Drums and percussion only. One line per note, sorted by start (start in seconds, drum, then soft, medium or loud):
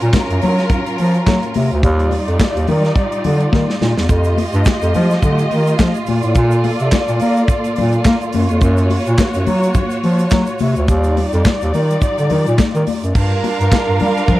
0.02 closed hi-hat soft
0.13 kick loud
0.13 snare loud
0.13 clap medium
0.13 closed hi-hat medium
0.13 high conga medium
0.30 closed hi-hat soft
0.42 open hi-hat medium
0.42 muted conga medium
0.42 low conga medium
0.59 snare soft
0.59 closed hi-hat soft
0.70 kick loud
0.70 closed hi-hat medium
0.70 low conga medium
0.86 closed hi-hat soft
0.98 open hi-hat medium
0.98 muted conga soft
1.14 closed hi-hat soft
1.27 kick loud
1.27 snare loud
1.27 clap medium
1.27 closed hi-hat medium
1.27 high conga medium
1.43 closed hi-hat soft
1.54 open hi-hat medium
1.54 high conga medium
1.71 closed hi-hat soft
1.83 kick loud
1.83 closed hi-hat medium
1.99 closed hi-hat soft
2.11 open hi-hat medium
2.11 muted conga soft
2.28 closed hi-hat soft
2.40 kick medium
2.40 snare loud
2.40 clap medium
2.40 closed hi-hat medium
2.40 high conga medium
2.57 closed hi-hat soft
2.67 open hi-hat medium
2.67 muted conga medium
2.67 low conga medium
2.85 snare soft
2.85 closed hi-hat soft
2.96 kick loud
2.96 closed hi-hat medium
3.12 closed hi-hat soft
3.24 open hi-hat medium
3.24 muted conga soft
3.24 low conga medium
3.40 closed hi-hat soft
3.52 kick loud
3.52 snare soft
3.52 high conga medium
3.70 snare medium
3.81 snare medium
3.81 high conga medium
3.97 snare medium
4.09 kick loud
4.09 closed hi-hat medium
4.09 shaker medium
4.24 closed hi-hat soft
4.24 shaker medium
4.38 open hi-hat medium
4.38 muted conga soft
4.53 closed hi-hat soft
4.53 shaker medium
4.65 kick loud
4.65 snare loud
4.65 clap medium
4.65 closed hi-hat medium
4.65 high conga medium
4.65 shaker medium
4.82 closed hi-hat medium
4.82 shaker medium
4.94 open hi-hat medium
4.94 muted conga soft
4.94 low conga medium
4.94 shaker medium
5.11 snare soft
5.11 closed hi-hat soft
5.11 shaker medium
5.22 kick medium
5.22 closed hi-hat medium
5.22 low conga medium
5.22 shaker medium
5.38 closed hi-hat soft
5.38 shaker soft
5.51 open hi-hat medium
5.51 muted conga soft
5.67 closed hi-hat soft
5.67 shaker medium
5.79 kick loud
5.79 snare loud
5.79 clap medium
5.79 closed hi-hat medium
5.79 high conga medium
5.79 shaker medium
5.94 closed hi-hat soft
5.94 shaker medium
6.06 open hi-hat medium
6.06 high conga medium
6.06 shaker soft
6.22 closed hi-hat soft
6.22 shaker soft
6.35 kick loud
6.35 closed hi-hat medium
6.35 shaker medium
6.51 closed hi-hat soft
6.51 shaker medium
6.64 open hi-hat medium
6.64 muted conga medium
6.80 closed hi-hat soft
6.80 shaker soft
6.92 kick loud
6.92 snare loud
6.92 clap medium
6.92 closed hi-hat medium
6.92 high conga medium
6.92 shaker medium
7.08 closed hi-hat soft
7.08 shaker medium
7.20 open hi-hat medium
7.20 muted conga soft
7.20 shaker medium
7.37 closed hi-hat soft
7.37 shaker medium
7.48 kick loud
7.48 closed hi-hat medium
7.48 shaker medium
7.64 closed hi-hat soft
7.64 shaker medium
7.76 open hi-hat medium
7.76 muted conga soft
7.76 low conga medium
7.93 closed hi-hat soft
7.93 shaker medium
8.05 kick loud
8.05 snare loud
8.05 clap medium
8.05 closed hi-hat medium
8.05 high conga medium
8.05 shaker medium
8.21 closed hi-hat soft
8.21 shaker medium
8.33 open hi-hat medium
8.33 high conga medium
8.33 shaker soft
8.49 closed hi-hat soft
8.49 shaker soft
8.61 kick loud
8.61 closed hi-hat medium
8.61 shaker medium
8.77 closed hi-hat soft
8.77 shaker medium
8.90 open hi-hat medium
8.90 muted conga soft
9.06 closed hi-hat soft
9.06 shaker medium
9.18 kick loud
9.18 snare loud
9.18 clap medium
9.18 closed hi-hat medium
9.18 high conga medium
9.18 shaker medium
9.34 closed hi-hat medium
9.34 shaker medium
9.46 open hi-hat medium
9.46 muted conga medium
9.46 low conga medium
9.46 shaker medium
9.63 closed hi-hat soft
9.63 shaker medium
9.74 kick loud
9.74 closed hi-hat medium
9.74 low conga medium
9.74 shaker medium
9.90 closed hi-hat soft
9.90 shaker medium
10.03 open hi-hat medium
10.03 muted conga soft
10.18 closed hi-hat soft
10.18 shaker medium
10.30 kick loud
10.30 snare loud
10.30 clap medium
10.30 closed hi-hat medium
10.30 high conga medium
10.30 shaker medium
10.46 closed hi-hat soft
10.46 shaker medium
10.59 open hi-hat medium
10.59 high conga medium
10.59 shaker soft
10.76 closed hi-hat soft
10.76 shaker medium
10.88 kick loud
10.88 closed hi-hat medium
10.88 shaker medium
11.04 closed hi-hat soft
11.04 shaker medium
11.17 open hi-hat medium
11.17 muted conga medium
11.32 closed hi-hat soft
11.32 shaker medium
11.45 kick loud
11.45 snare loud
11.45 clap medium
11.45 closed hi-hat medium
11.45 high conga medium
11.45 shaker medium
11.61 closed hi-hat medium
11.61 shaker medium
11.74 open hi-hat medium
11.74 muted conga soft
11.74 shaker medium
11.90 closed hi-hat soft
11.90 shaker medium
12.02 kick loud
12.02 closed hi-hat medium
12.02 shaker medium
12.18 closed hi-hat soft
12.18 shaker soft
12.30 open hi-hat medium
12.30 muted conga soft
12.30 low conga medium
12.46 closed hi-hat soft
12.46 shaker soft
12.58 kick loud
12.58 snare medium
12.58 clap medium
12.58 closed hi-hat medium
12.58 high conga medium
12.58 shaker medium
12.75 closed hi-hat soft
12.75 shaker medium
12.87 open hi-hat medium
12.87 high conga medium
12.87 shaker medium
13.04 closed hi-hat soft
13.04 shaker soft
13.15 kick loud
13.15 crash loud
13.44 open hi-hat medium
13.44 muted conga soft
13.61 closed hi-hat soft
13.72 kick loud
13.72 snare loud
13.72 clap medium
13.72 closed hi-hat medium
13.72 high conga medium
14.00 open hi-hat medium
14.00 muted conga soft
14.00 low conga medium
14.17 closed hi-hat soft
14.28 kick loud
14.28 closed hi-hat medium
14.28 low conga medium